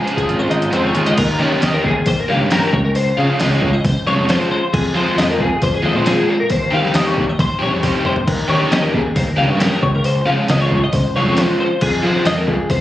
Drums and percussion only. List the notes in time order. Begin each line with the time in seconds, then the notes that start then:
0.08 closed hi-hat
0.17 kick, closed hi-hat
0.29 closed hi-hat
0.51 closed hi-hat
0.62 closed hi-hat
0.73 closed hi-hat
0.95 closed hi-hat
1.06 closed hi-hat
1.18 kick, open hi-hat, crash
1.53 snare
1.62 snare, open hi-hat
1.84 kick
2.06 kick, open hi-hat
2.30 snare
2.51 snare, open hi-hat
2.73 kick
2.95 open hi-hat
3.40 snare, open hi-hat
3.62 kick
3.85 kick, open hi-hat
4.08 snare
4.29 snare, open hi-hat
4.74 kick, crash
5.18 snare, open hi-hat
5.40 kick
5.62 kick, open hi-hat
6.06 snare, open hi-hat
6.50 kick, open hi-hat
6.85 snare
6.94 snare, open hi-hat
7.17 kick
7.39 kick, open hi-hat
7.63 snare
7.83 kick, open hi-hat
8.05 mid tom
8.16 floor tom
8.28 kick, crash
8.62 snare
8.72 snare, open hi-hat
8.94 kick
9.16 kick, open hi-hat
9.41 snare
9.60 snare, open hi-hat
9.83 kick
10.04 open hi-hat
10.48 snare, open hi-hat
10.71 kick
10.93 kick, open hi-hat
11.16 snare
11.37 snare, open hi-hat
11.81 kick, crash
12.16 snare
12.25 snare, open hi-hat
12.48 kick
12.70 kick, open hi-hat